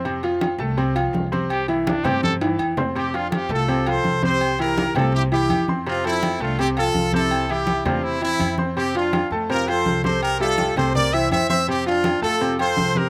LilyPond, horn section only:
\new Staff \with { instrumentName = "Horn section" } { \time 4/4 \key f \major \tempo 4 = 165 << { r1 | r1 | g'8 f'16. a'32 g'8 a'4 c''4 c''8~ | c''8 bes'4 a'8 g'8 g'4 r8 |
f'8 e'4 f'8 g'8 a'4 a'8~ | a'8 g'4 f'8 e'8 e'4 r8 | g'8 f'4 r8 bes'8 c''4 c''8 | bes'8 a'4 c''8 d''8 e''8 e''8 e''8 |
g'8 f'4 a'4 c''4 bes'8 | } \\ { r1 | r1 | c'8 d'8 c'8 f'4 a'4 g'8~ | g'8 g'4 f'8 e'8 e'4 r8 |
c'8 c'4 d'8 c'8 f'4 e'8~ | e'8 e'4 d'8 c'8 c'4 r8 | c'8 d'4 r8 f'8 a'4 a'8 | g'8 f'4 a'8 bes'8 c''8 c''8 c''8 |
c'8 d'4 f'4 a'4 g'8 | } >> }